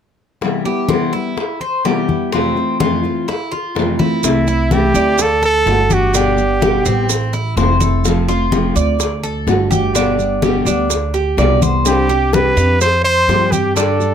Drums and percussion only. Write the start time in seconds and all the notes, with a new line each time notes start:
0.41 high bongo, high conga
0.65 high conga
0.89 high bongo, high conga
1.37 high bongo, high conga
1.61 high conga
1.85 high bongo, low bongo, high conga
2.09 high conga
2.33 high bongo, high conga
2.57 high conga
2.80 high bongo, high conga
3.05 high bongo, high conga
3.29 high bongo, high conga
3.52 high bongo, high conga
3.76 high bongo, low bongo, high conga
4.00 high bongo, high conga
4.24 high bongo, high conga, maracas
4.47 high conga, maracas
4.71 high bongo, high conga, maracas
4.95 maracas
5.18 high bongo, high conga, maracas
5.42 high conga, maracas
5.66 high bongo, low bongo, high conga, maracas
5.90 high conga, maracas
6.14 high bongo, high conga, maracas
6.38 high conga, maracas
6.62 high bongo, high conga, maracas
6.85 high bongo, high conga, maracas
7.09 high bongo, high conga, maracas
7.33 high bongo, high conga, maracas
7.57 high bongo, low bongo, high conga, maracas
7.81 high bongo, high conga, maracas
8.05 high bongo, high conga, maracas
8.29 high conga, maracas
8.52 high bongo, high conga, maracas
8.76 maracas
9.00 high bongo, high conga, maracas
9.23 high conga, maracas
9.48 high bongo, low bongo, high conga, maracas
9.72 high conga, maracas
9.95 high bongo, high conga, maracas
10.19 high conga, maracas
10.42 high bongo, high conga, maracas
10.67 high bongo, high conga, maracas
10.90 high bongo, high conga, maracas
11.14 high bongo, high conga, maracas
11.38 high bongo, low bongo, high conga, maracas
11.62 high bongo, high conga, maracas
11.86 high bongo, maracas
12.10 high conga, maracas
12.33 high bongo, high conga, maracas
12.57 maracas
12.81 high bongo, high conga, maracas
13.05 high conga, maracas
13.29 high bongo, low bongo, high conga, maracas
13.52 high conga, maracas
13.76 high bongo, high conga, maracas
14.00 high conga, maracas